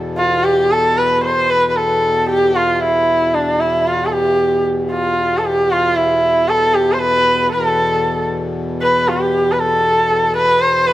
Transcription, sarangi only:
0.18 0.45 F4 medium
0.44 0.73 G4 medium
0.71 0.99 A4 medium
0.97 1.23 B4 medium
1.24 1.52 C5 medium
1.51 1.70 B4 medium
1.70 1.78 B4 medium
1.76 2.29 A4 medium
2.30 2.57 G4 medium
2.56 2.75 F4 medium
2.75 2.83 F4 medium
2.81 3.36 E4 medium
3.34 3.61 D4 medium
3.60 3.88 E4 medium
3.87 4.07 F4 medium
4.06 4.14 A4 medium
4.12 4.65 G4 medium
4.92 5.39 F4 medium
5.37 5.47 A4 medium
5.45 5.73 G4 medium
5.71 5.98 F4 medium
5.97 6.50 E4 medium
6.49 6.76 A4 medium
6.74 6.94 G4 medium
6.93 7.01 C5 medium
6.99 7.51 B4 loud
7.52 8.26 A4 medium
8.83 9.10 B4 medium
9.08 9.53 G4 medium
9.52 9.61 B4 medium
9.59 10.36 A4 medium
10.37 10.63 B4 loud
10.62 10.89 C5 medium
10.87 10.93 B4 medium

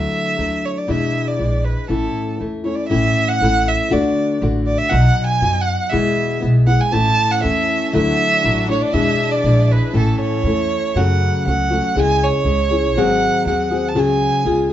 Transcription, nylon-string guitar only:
0.00 0.38 D3 medium
0.00 0.36 F#3 medium
0.00 0.37 A3 medium
0.00 0.38 D4 medium
0.00 0.39 E4 medium
0.38 0.88 F#3 soft
0.38 0.88 A3 soft
0.38 0.88 D4 medium
0.38 0.88 E4 soft
0.87 1.38 E2 medium
0.87 1.39 B2 medium
0.87 1.38 E3 medium
0.87 1.37 G#3 medium
0.87 1.38 D4 medium
0.87 1.40 E4 medium
1.38 1.89 E3 soft
1.38 1.88 G#3 soft
1.38 1.89 D4 medium
1.38 1.90 E4 soft
1.89 2.40 A2 medium
1.89 2.37 E3 medium
1.89 2.39 A3 medium
1.89 2.39 C#4 medium
1.89 2.39 E4 medium
2.39 2.65 E3 soft
2.39 2.65 A3 soft
2.39 2.64 C#4 soft
2.39 2.63 E4 soft
2.64 2.89 A3 soft
2.64 2.90 C#4 soft
2.64 2.90 E4 soft
2.90 3.41 A2 medium
2.90 3.41 E3 medium
2.90 3.41 A3 medium
2.90 3.41 C#4 medium
2.90 3.41 E4 medium
3.42 3.89 E3 medium
3.42 3.89 A3 medium
3.42 3.91 C#4 medium
3.42 3.91 E4 medium
3.90 4.39 D3 medium
3.90 4.40 A3 medium
3.90 4.40 D4 medium
3.90 4.41 F#4 medium
4.41 4.90 D3 medium
4.41 4.90 A3 medium
4.41 4.90 D4 medium
4.41 4.90 F#4 medium
4.90 5.41 B2 medium
4.90 5.41 F#3 medium
4.90 5.41 B3 medium
4.90 5.41 D#4 medium
4.90 5.41 F#4 medium
5.42 5.91 F#3 soft
5.42 5.91 B3 medium
5.42 5.92 D#4 medium
5.42 5.93 F#4 medium
5.91 6.42 E2 medium
5.91 6.42 B2 medium
5.91 6.39 E3 medium
5.91 6.39 G#3 medium
5.91 6.40 B3 medium
5.91 6.42 E4 medium
6.40 6.66 E3 soft
6.40 6.67 G#3 medium
6.40 6.66 B3 medium
6.40 6.66 E4 medium
6.67 6.91 E3 soft
6.67 6.93 G#3 soft
6.67 6.92 B3 soft
6.67 6.91 E4 soft
6.92 7.43 A2 medium
6.92 7.41 E3 medium
6.92 7.41 A3 medium
6.92 7.42 C#4 medium
6.92 7.43 E4 medium
7.42 7.93 E3 medium
7.42 7.92 A3 medium
7.42 7.93 C#4 medium
7.42 7.94 E4 medium
7.93 8.44 D3 medium
7.93 8.43 F#3 medium
7.93 8.43 A3 medium
7.93 8.44 D4 medium
7.93 8.44 E4 medium
8.44 8.69 F#3 medium
8.44 8.68 A3 medium
8.44 8.68 D4 soft
8.44 8.66 E4 medium
8.68 8.94 A3 soft
8.68 8.93 D4 soft
8.68 8.93 E4 soft
8.93 9.43 E2 medium
8.93 9.44 B2 medium
8.93 9.42 E3 medium
8.93 9.44 G#3 medium
8.93 9.44 D4 medium
8.93 9.44 E4 medium
9.44 9.93 E3 medium
9.44 9.93 G#3 medium
9.44 9.94 D4 medium
9.44 9.93 E4 medium
9.93 10.44 A2 medium
9.93 10.44 E3 medium
9.93 10.44 A3 medium
9.93 10.46 C#4 medium
9.93 10.45 E4 medium
10.45 10.95 E3 medium
10.45 10.95 A3 medium
10.45 10.97 C#4 medium
10.45 10.96 E4 medium
10.96 11.46 F#2 medium
10.96 11.46 C#3 medium
10.96 11.46 F#3 medium
10.96 11.45 A3 medium
10.96 11.46 C#4 medium
10.96 11.46 F#4 medium
11.47 11.71 F#3 soft
11.47 11.71 A3 medium
11.47 11.71 C#4 soft
11.47 11.70 F#4 medium
11.71 11.96 F#3 soft
11.71 11.96 A3 soft
11.71 11.95 C#4 soft
11.71 11.96 F#4 soft
11.96 12.46 C#3 medium
11.96 12.44 G#3 medium
11.96 12.44 C#4 medium
11.96 12.44 E4 medium
11.96 12.45 G#4 medium
12.45 12.70 G#3 medium
12.45 12.70 C#4 medium
12.45 12.70 E4 medium
12.45 12.70 G#4 medium
12.71 12.96 C#4 soft
12.71 12.96 E4 soft
12.71 12.95 G#4 soft
12.96 13.45 G#2 medium
12.96 13.46 D#3 medium
12.96 13.45 F#3 medium
12.96 13.46 C4 medium
12.96 13.46 F#4 medium
12.96 13.46 G#4 medium
13.46 13.71 F#3 medium
13.46 13.71 C4 medium
13.46 13.70 F#4 medium
13.46 13.69 G#4 medium
13.71 13.94 F#3 soft
13.71 13.95 C4 soft
13.71 13.95 F#4 soft
13.71 13.95 G#4 soft
13.95 14.45 C#3 medium
13.95 14.44 F#3 medium
13.95 14.45 C#4 medium
13.95 14.45 F#4 medium
13.95 14.45 G#4 medium
14.45 14.70 G#3 soft
14.45 14.70 C#4 medium
14.45 14.70 F4 medium
14.45 14.69 G#4 medium

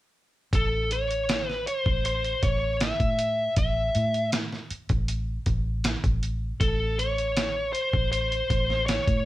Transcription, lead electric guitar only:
0.55 0.89 A4 medium
0.92 1.49 C#5 medium
1.49 1.67 B4 medium
1.68 2.05 C5 medium
2.06 2.40 C5 medium
2.43 2.78 C#5 loud
2.82 3.53 E5 loud
3.58 4.29 E5 medium
6.61 6.99 A4 medium
6.99 7.72 C#5 loud
7.73 8.09 C5 medium
8.12 8.86 C5 medium
8.86 9.25 C#5 medium

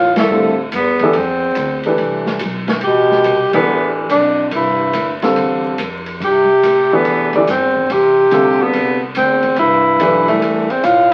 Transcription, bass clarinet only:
0.00 0.14 A2 medium
0.17 0.56 C2 medium
0.75 1.17 E2 medium
1.17 1.87 E2 medium
2.84 3.50 B2 medium
3.56 3.95 E2 medium
4.11 4.50 F2 medium
4.54 5.20 G2 medium
6.24 6.96 C3 medium
6.94 7.35 E2 medium
7.48 7.92 E2 medium
7.91 8.62 C3 medium
8.60 9.02 E2 medium
9.17 9.56 E2 medium
9.59 10.25 G2 medium
10.30 10.72 C2 medium
10.70 10.86 E2 medium
10.85 11.14 A2 medium

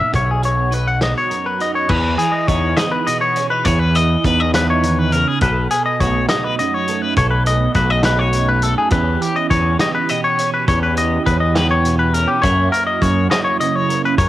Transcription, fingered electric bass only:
0.14 1.13 B1 medium
1.90 2.15 E2 loud
2.48 2.73 E2 medium
3.66 4.15 E2 medium
4.24 5.23 E2 medium
5.42 5.66 B1 loud
6.01 6.25 B1 medium
7.17 7.66 B1 medium
7.75 8.74 B1 medium
8.91 9.16 E2 loud
9.51 9.75 E2 medium
10.68 11.17 E2 medium
11.27 12.25 E2 medium
12.44 12.68 F#2 loud
13.02 13.26 F#2 medium
14.18 14.29 F#2 medium

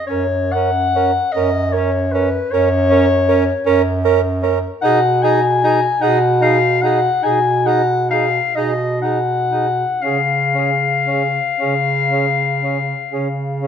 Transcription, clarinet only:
0.07 0.54 C#5 loud
0.52 1.34 F#5 loud
1.32 1.74 D#5 loud
1.73 2.14 C#5 medium
2.12 2.53 B4 medium
2.52 4.43 C#5 loud
4.82 5.24 F#5 loud
5.23 6.03 G#5 loud
6.02 6.44 F#5 loud
6.43 6.83 F5 loud
6.82 7.25 F#5 loud
7.23 7.68 G#5 loud
7.66 8.10 F#5 loud
8.11 8.57 F5 loud
8.56 9.01 D#5 loud
9.02 10.04 F#5 medium
10.02 13.67 F5 medium

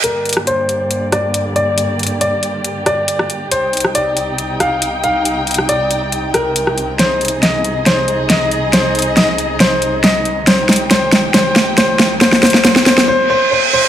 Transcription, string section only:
0.04 3.48 G2 medium
0.04 3.48 D3 medium
0.04 3.48 A#3 medium
0.04 6.95 G4 medium
0.04 3.48 D5 medium
3.51 13.04 C2 medium
3.51 13.04 C3 medium
3.51 6.96 D#4 medium
3.51 6.96 G5 medium
6.99 13.04 D#4 medium
6.99 10.44 G#4 medium
6.99 10.44 D#5 medium
10.47 13.05 G4 medium
10.47 13.05 G5 medium

